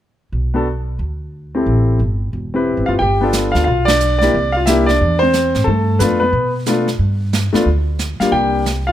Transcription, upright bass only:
0.32 B1
0.99 D2
1.66 A1
1.99 G1
2.33 E1
2.77 G1
2.88 F#1
3.00 G1
3.55 D2
3.67 B1
4.34 C2
5.01 E2
5.55 G#2
5.67 G2
6.00 F2
6.33 B2
6.99 G2
7.53 muted upright bass stroke
7.66 D2
8.20 muted upright bass stroke
8.32 C2

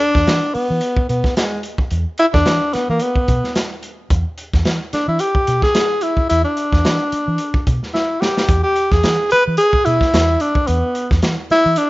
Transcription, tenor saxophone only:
0.00 D4
0.54 B3
1.09 B3
1.36 G#3
2.19 E4
2.34 D4
2.74 B3
2.90 A#3
3.02 B3
4.93 D4
5.08 E4
5.20 G4
5.63 G#4
6.02 E4
6.29 E4
6.44 D4
7.93 E4
8.20 G4
8.63 G4
8.92 G#4
9.31 B4
9.58 G#4
9.85 E4
10.41 D4
10.67 B3
11.51 E4
11.77 D4

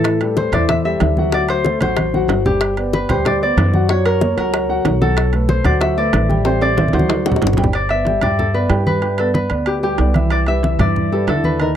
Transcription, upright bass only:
Already playing: A2
0.52 E2
1.01 D2
1.81 A1
2.28 G1
3.09 D2
3.57 F#2
4.38 C#2
4.85 B1
5.64 D2
6.13 A1
6.93 D2
7.42 G1
8.22 G2
8.70 G2
9.51 D2
9.99 C2
10.79 G2
11.27 D#2

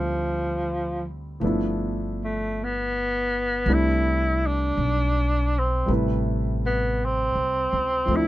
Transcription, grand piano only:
Already playing: D3 G3 A3 C4 E4
1.40 F3 A3 B3 D4
1.45 E4
3.68 G3 A3 C4 D4 E4
5.86 G3 A3 B4
5.91 C3 E4
8.06 F3 A3
8.11 C4 D4
8.17 E4

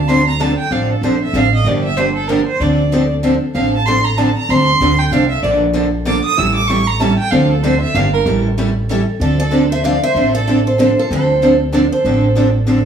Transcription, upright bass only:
Already playing: D2
0.71 A1
1.01 A#1
1.33 A1
1.65 G1
2.60 D2
3.55 A1
4.49 D2
4.81 D2
5.11 C2
5.43 A#1
6.38 A1
7.32 D2
7.94 G1
8.26 A1
9.20 D2
10.15 A1
11.11 D2
12.04 A1

